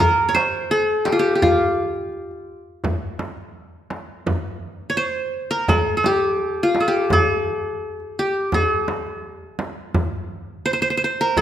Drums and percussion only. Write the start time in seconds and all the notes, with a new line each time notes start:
0.00 darbuka dum
0.36 darbuka tek, frame drum
0.54 darbuka ka
1.06 darbuka tek, frame drum
1.42 darbuka dum, frame drum
1.95 darbuka ka
2.12 darbuka ka
2.31 darbuka ka
2.84 darbuka dum, frame drum
3.19 darbuka tek, frame drum
3.37 darbuka ka
3.90 darbuka tek, frame drum
4.26 darbuka dum, frame drum
5.16 darbuka ka
5.68 frame drum, darbuka dum
6.04 darbuka tek, frame drum
6.23 darbuka ka
6.75 darbuka tek, frame drum
7.10 frame drum, darbuka dum
8.00 darbuka ka
8.52 frame drum, darbuka dum
8.88 darbuka tek, frame drum
9.06 darbuka ka
9.59 darbuka tek, frame drum
9.94 frame drum, darbuka dum
10.84 darbuka ka
11.37 frame drum, darbuka dum